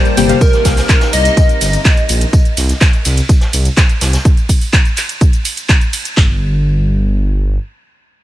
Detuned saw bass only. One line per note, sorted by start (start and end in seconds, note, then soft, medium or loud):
0.17 0.33 G1 medium
0.65 0.81 C2 loud
1.13 1.29 C2 loud
1.61 1.77 G1 medium
2.09 2.25 A#1 loud
2.57 2.73 C2 loud
3.06 3.21 C2 medium
3.53 3.69 C2 medium
4.01 4.17 C2 medium
6.17 7.57 G1 loud